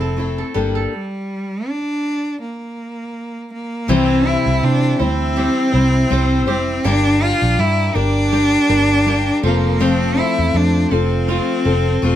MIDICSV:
0, 0, Header, 1, 6, 480
1, 0, Start_track
1, 0, Tempo, 740741
1, 596, Time_signature, 4, 2, 24, 8
1, 7877, End_track
2, 0, Start_track
2, 0, Title_t, "Pipe organ"
2, 0, Program_c, 0, 19
2, 2512, Note_on_c, 0, 72, 78
2, 2512, Note_on_c, 0, 88, 84
2, 2516, Note_on_c, 0, 79, 64
2, 2517, Note_on_c, 0, 76, 66
2, 4414, Note_off_c, 0, 88, 0
2, 4415, Note_off_c, 0, 72, 0
2, 4417, Note_off_c, 0, 76, 0
2, 4436, Note_on_c, 0, 70, 76
2, 4437, Note_on_c, 0, 74, 70
2, 4437, Note_on_c, 0, 86, 81
2, 6088, Note_off_c, 0, 79, 0
2, 6098, Note_off_c, 0, 70, 0
2, 6098, Note_off_c, 0, 74, 0
2, 6098, Note_off_c, 0, 86, 0
2, 6111, Note_on_c, 0, 69, 70
2, 6113, Note_on_c, 0, 81, 69
2, 6114, Note_on_c, 0, 84, 76
2, 6115, Note_on_c, 0, 72, 67
2, 7877, Note_off_c, 0, 69, 0
2, 7877, Note_off_c, 0, 72, 0
2, 7877, Note_off_c, 0, 81, 0
2, 7877, Note_off_c, 0, 84, 0
2, 7877, End_track
3, 0, Start_track
3, 0, Title_t, "Steel-string acoustic guitar"
3, 0, Program_c, 1, 25
3, 0, Note_on_c, 1, 60, 38
3, 0, Note_on_c, 1, 64, 41
3, 0, Note_on_c, 1, 69, 52
3, 108, Note_off_c, 1, 60, 0
3, 108, Note_on_c, 1, 57, 56
3, 112, Note_off_c, 1, 69, 0
3, 114, Note_off_c, 1, 64, 0
3, 115, Note_on_c, 1, 60, 59
3, 122, Note_on_c, 1, 64, 57
3, 128, Note_on_c, 1, 69, 62
3, 344, Note_off_c, 1, 69, 0
3, 352, Note_off_c, 1, 57, 0
3, 352, Note_on_c, 1, 69, 62
3, 354, Note_off_c, 1, 64, 0
3, 356, Note_off_c, 1, 60, 0
3, 357, Note_on_c, 1, 67, 58
3, 360, Note_on_c, 1, 62, 49
3, 364, Note_on_c, 1, 58, 50
3, 368, Note_on_c, 1, 55, 44
3, 594, Note_off_c, 1, 69, 0
3, 596, Note_off_c, 1, 67, 0
3, 598, Note_off_c, 1, 62, 0
3, 600, Note_off_c, 1, 58, 0
3, 602, Note_off_c, 1, 55, 0
3, 2515, Note_on_c, 1, 48, 80
3, 2518, Note_on_c, 1, 52, 82
3, 2521, Note_on_c, 1, 55, 84
3, 2524, Note_on_c, 1, 60, 78
3, 2525, Note_on_c, 1, 64, 89
3, 2529, Note_on_c, 1, 72, 81
3, 3225, Note_off_c, 1, 72, 0
3, 3232, Note_off_c, 1, 64, 0
3, 3233, Note_on_c, 1, 72, 52
3, 3236, Note_off_c, 1, 48, 0
3, 3238, Note_off_c, 1, 52, 0
3, 3239, Note_off_c, 1, 60, 0
3, 3240, Note_on_c, 1, 64, 50
3, 3246, Note_on_c, 1, 60, 51
3, 3251, Note_off_c, 1, 55, 0
3, 3254, Note_on_c, 1, 55, 46
3, 3464, Note_off_c, 1, 55, 0
3, 3472, Note_on_c, 1, 55, 53
3, 3474, Note_off_c, 1, 60, 0
3, 3475, Note_off_c, 1, 72, 0
3, 3479, Note_off_c, 1, 64, 0
3, 3481, Note_on_c, 1, 60, 58
3, 3488, Note_on_c, 1, 64, 63
3, 3494, Note_on_c, 1, 72, 64
3, 3701, Note_off_c, 1, 72, 0
3, 3709, Note_off_c, 1, 64, 0
3, 3709, Note_on_c, 1, 72, 51
3, 3715, Note_off_c, 1, 55, 0
3, 3716, Note_off_c, 1, 60, 0
3, 3717, Note_on_c, 1, 64, 46
3, 3724, Note_on_c, 1, 60, 47
3, 3732, Note_on_c, 1, 55, 44
3, 3943, Note_off_c, 1, 55, 0
3, 3950, Note_off_c, 1, 60, 0
3, 3951, Note_on_c, 1, 55, 75
3, 3953, Note_off_c, 1, 72, 0
3, 3957, Note_off_c, 1, 64, 0
3, 3958, Note_on_c, 1, 60, 73
3, 3965, Note_on_c, 1, 64, 81
3, 3971, Note_on_c, 1, 72, 79
3, 4182, Note_off_c, 1, 72, 0
3, 4190, Note_off_c, 1, 64, 0
3, 4190, Note_on_c, 1, 72, 55
3, 4194, Note_off_c, 1, 55, 0
3, 4197, Note_off_c, 1, 60, 0
3, 4198, Note_on_c, 1, 64, 53
3, 4204, Note_on_c, 1, 60, 50
3, 4210, Note_on_c, 1, 55, 48
3, 4426, Note_off_c, 1, 55, 0
3, 4433, Note_off_c, 1, 72, 0
3, 4433, Note_on_c, 1, 55, 81
3, 4436, Note_off_c, 1, 60, 0
3, 4437, Note_off_c, 1, 64, 0
3, 4439, Note_on_c, 1, 62, 92
3, 4443, Note_on_c, 1, 67, 83
3, 4449, Note_on_c, 1, 70, 98
3, 5143, Note_off_c, 1, 70, 0
3, 5151, Note_on_c, 1, 70, 60
3, 5154, Note_off_c, 1, 55, 0
3, 5154, Note_off_c, 1, 67, 0
3, 5157, Note_off_c, 1, 62, 0
3, 5162, Note_on_c, 1, 67, 51
3, 5173, Note_on_c, 1, 62, 47
3, 5388, Note_off_c, 1, 62, 0
3, 5389, Note_on_c, 1, 55, 57
3, 5393, Note_off_c, 1, 70, 0
3, 5396, Note_on_c, 1, 62, 64
3, 5397, Note_off_c, 1, 67, 0
3, 5405, Note_on_c, 1, 67, 65
3, 5409, Note_on_c, 1, 70, 67
3, 5624, Note_off_c, 1, 70, 0
3, 5631, Note_on_c, 1, 70, 57
3, 5632, Note_off_c, 1, 55, 0
3, 5634, Note_off_c, 1, 67, 0
3, 5635, Note_off_c, 1, 62, 0
3, 5642, Note_on_c, 1, 67, 47
3, 5652, Note_on_c, 1, 62, 40
3, 5869, Note_on_c, 1, 55, 69
3, 5870, Note_off_c, 1, 62, 0
3, 5873, Note_off_c, 1, 70, 0
3, 5876, Note_off_c, 1, 67, 0
3, 5878, Note_on_c, 1, 62, 80
3, 5884, Note_on_c, 1, 67, 86
3, 5891, Note_on_c, 1, 70, 80
3, 6107, Note_off_c, 1, 70, 0
3, 6110, Note_on_c, 1, 69, 55
3, 6112, Note_off_c, 1, 55, 0
3, 6116, Note_off_c, 1, 62, 0
3, 6119, Note_off_c, 1, 67, 0
3, 6122, Note_on_c, 1, 65, 53
3, 6130, Note_on_c, 1, 60, 42
3, 6348, Note_on_c, 1, 53, 77
3, 6350, Note_off_c, 1, 60, 0
3, 6352, Note_off_c, 1, 69, 0
3, 6353, Note_on_c, 1, 57, 82
3, 6358, Note_off_c, 1, 65, 0
3, 6358, Note_on_c, 1, 60, 89
3, 6363, Note_on_c, 1, 69, 89
3, 7067, Note_off_c, 1, 69, 0
3, 7069, Note_on_c, 1, 69, 57
3, 7076, Note_off_c, 1, 60, 0
3, 7081, Note_on_c, 1, 65, 53
3, 7089, Note_on_c, 1, 60, 48
3, 7305, Note_off_c, 1, 57, 0
3, 7307, Note_on_c, 1, 57, 57
3, 7309, Note_off_c, 1, 60, 0
3, 7311, Note_off_c, 1, 69, 0
3, 7316, Note_on_c, 1, 60, 62
3, 7317, Note_off_c, 1, 65, 0
3, 7324, Note_on_c, 1, 65, 68
3, 7330, Note_on_c, 1, 69, 65
3, 7540, Note_off_c, 1, 69, 0
3, 7548, Note_on_c, 1, 69, 59
3, 7550, Note_off_c, 1, 57, 0
3, 7552, Note_off_c, 1, 65, 0
3, 7555, Note_off_c, 1, 60, 0
3, 7559, Note_on_c, 1, 65, 51
3, 7570, Note_on_c, 1, 60, 46
3, 7788, Note_off_c, 1, 60, 0
3, 7790, Note_on_c, 1, 57, 78
3, 7791, Note_off_c, 1, 69, 0
3, 7796, Note_off_c, 1, 65, 0
3, 7796, Note_on_c, 1, 60, 75
3, 7803, Note_on_c, 1, 65, 73
3, 7810, Note_on_c, 1, 69, 84
3, 7877, Note_off_c, 1, 53, 0
3, 7877, Note_off_c, 1, 57, 0
3, 7877, Note_off_c, 1, 60, 0
3, 7877, Note_off_c, 1, 65, 0
3, 7877, Note_off_c, 1, 69, 0
3, 7877, End_track
4, 0, Start_track
4, 0, Title_t, "Nylon-string guitar"
4, 0, Program_c, 2, 24
4, 0, Note_on_c, 2, 60, 51
4, 0, Note_on_c, 2, 64, 52
4, 4, Note_on_c, 2, 69, 55
4, 108, Note_off_c, 2, 64, 0
4, 116, Note_on_c, 2, 64, 56
4, 245, Note_off_c, 2, 69, 0
4, 248, Note_on_c, 2, 69, 56
4, 353, Note_on_c, 2, 55, 72
4, 408, Note_off_c, 2, 60, 0
4, 409, Note_off_c, 2, 64, 0
4, 484, Note_off_c, 2, 69, 0
4, 487, Note_on_c, 2, 69, 58
4, 648, Note_off_c, 2, 69, 0
4, 972, Note_off_c, 2, 55, 0
4, 2522, Note_on_c, 2, 52, 84
4, 2758, Note_on_c, 2, 64, 62
4, 3002, Note_on_c, 2, 60, 62
4, 3230, Note_off_c, 2, 64, 0
4, 3238, Note_on_c, 2, 64, 61
4, 3478, Note_on_c, 2, 67, 68
4, 3711, Note_off_c, 2, 64, 0
4, 3719, Note_on_c, 2, 64, 61
4, 3950, Note_off_c, 2, 60, 0
4, 3958, Note_on_c, 2, 60, 62
4, 4194, Note_off_c, 2, 67, 0
4, 4197, Note_on_c, 2, 67, 70
4, 4434, Note_off_c, 2, 60, 0
4, 4437, Note_on_c, 2, 58, 86
4, 4439, Note_off_c, 2, 52, 0
4, 4490, Note_off_c, 2, 64, 0
4, 4679, Note_on_c, 2, 62, 64
4, 4909, Note_off_c, 2, 58, 0
4, 4917, Note_on_c, 2, 58, 61
4, 5146, Note_off_c, 2, 62, 0
4, 5154, Note_on_c, 2, 62, 62
4, 5392, Note_off_c, 2, 67, 0
4, 5395, Note_on_c, 2, 67, 65
4, 5627, Note_off_c, 2, 62, 0
4, 5635, Note_on_c, 2, 62, 65
4, 5866, Note_off_c, 2, 58, 0
4, 5873, Note_on_c, 2, 58, 65
4, 6114, Note_on_c, 2, 53, 83
4, 6167, Note_off_c, 2, 58, 0
4, 6167, Note_off_c, 2, 62, 0
4, 6167, Note_off_c, 2, 67, 0
4, 6351, Note_off_c, 2, 53, 0
4, 6354, Note_on_c, 2, 53, 82
4, 6593, Note_on_c, 2, 60, 64
4, 6832, Note_on_c, 2, 57, 68
4, 7064, Note_off_c, 2, 60, 0
4, 7072, Note_on_c, 2, 60, 62
4, 7313, Note_on_c, 2, 65, 74
4, 7542, Note_off_c, 2, 60, 0
4, 7550, Note_on_c, 2, 60, 63
4, 7877, Note_off_c, 2, 53, 0
4, 7877, Note_off_c, 2, 57, 0
4, 7877, Note_off_c, 2, 60, 0
4, 7877, Note_off_c, 2, 65, 0
4, 7877, End_track
5, 0, Start_track
5, 0, Title_t, "Cello"
5, 0, Program_c, 3, 42
5, 0, Note_on_c, 3, 60, 82
5, 358, Note_off_c, 3, 60, 0
5, 606, Note_on_c, 3, 55, 87
5, 1088, Note_on_c, 3, 62, 98
5, 1097, Note_off_c, 3, 55, 0
5, 1560, Note_off_c, 3, 62, 0
5, 1564, Note_on_c, 3, 58, 79
5, 2255, Note_off_c, 3, 58, 0
5, 2287, Note_on_c, 3, 58, 83
5, 2523, Note_on_c, 3, 60, 107
5, 2532, Note_off_c, 3, 58, 0
5, 2769, Note_on_c, 3, 64, 93
5, 2779, Note_off_c, 3, 60, 0
5, 3008, Note_on_c, 3, 62, 102
5, 3018, Note_off_c, 3, 64, 0
5, 3245, Note_on_c, 3, 60, 113
5, 3255, Note_off_c, 3, 62, 0
5, 4201, Note_off_c, 3, 60, 0
5, 4206, Note_on_c, 3, 60, 97
5, 4440, Note_on_c, 3, 62, 113
5, 4450, Note_off_c, 3, 60, 0
5, 4683, Note_on_c, 3, 65, 106
5, 4693, Note_off_c, 3, 62, 0
5, 4922, Note_on_c, 3, 64, 104
5, 4932, Note_off_c, 3, 65, 0
5, 5158, Note_on_c, 3, 62, 119
5, 5168, Note_off_c, 3, 64, 0
5, 6116, Note_off_c, 3, 62, 0
5, 6126, Note_on_c, 3, 58, 93
5, 6360, Note_on_c, 3, 60, 111
5, 6370, Note_off_c, 3, 58, 0
5, 6604, Note_on_c, 3, 64, 102
5, 6613, Note_off_c, 3, 60, 0
5, 6846, Note_on_c, 3, 62, 99
5, 6856, Note_off_c, 3, 64, 0
5, 7084, Note_on_c, 3, 60, 104
5, 7094, Note_off_c, 3, 62, 0
5, 7877, Note_off_c, 3, 60, 0
5, 7877, End_track
6, 0, Start_track
6, 0, Title_t, "Fingered electric bass"
6, 0, Program_c, 4, 33
6, 0, Note_on_c, 4, 29, 84
6, 270, Note_off_c, 4, 29, 0
6, 358, Note_on_c, 4, 31, 85
6, 554, Note_off_c, 4, 31, 0
6, 2518, Note_on_c, 4, 36, 100
6, 2823, Note_off_c, 4, 36, 0
6, 2889, Note_on_c, 4, 36, 75
6, 2978, Note_off_c, 4, 36, 0
6, 2998, Note_on_c, 4, 48, 85
6, 3194, Note_off_c, 4, 48, 0
6, 3241, Note_on_c, 4, 38, 90
6, 3544, Note_off_c, 4, 38, 0
6, 3716, Note_on_c, 4, 36, 93
6, 3913, Note_off_c, 4, 36, 0
6, 3959, Note_on_c, 4, 36, 85
6, 4198, Note_off_c, 4, 36, 0
6, 4198, Note_on_c, 4, 29, 88
6, 4394, Note_off_c, 4, 29, 0
6, 4439, Note_on_c, 4, 31, 113
6, 4743, Note_off_c, 4, 31, 0
6, 4807, Note_on_c, 4, 34, 76
6, 4896, Note_off_c, 4, 34, 0
6, 4915, Note_on_c, 4, 43, 95
6, 5112, Note_off_c, 4, 43, 0
6, 5153, Note_on_c, 4, 31, 92
6, 5547, Note_off_c, 4, 31, 0
6, 5634, Note_on_c, 4, 31, 99
6, 6028, Note_off_c, 4, 31, 0
6, 6113, Note_on_c, 4, 29, 97
6, 6615, Note_off_c, 4, 29, 0
6, 6730, Note_on_c, 4, 40, 86
6, 6817, Note_off_c, 4, 40, 0
6, 6833, Note_on_c, 4, 41, 97
6, 7030, Note_off_c, 4, 41, 0
6, 7073, Note_on_c, 4, 29, 90
6, 7378, Note_off_c, 4, 29, 0
6, 7553, Note_on_c, 4, 29, 99
6, 7750, Note_off_c, 4, 29, 0
6, 7794, Note_on_c, 4, 28, 92
6, 7877, Note_off_c, 4, 28, 0
6, 7877, End_track
0, 0, End_of_file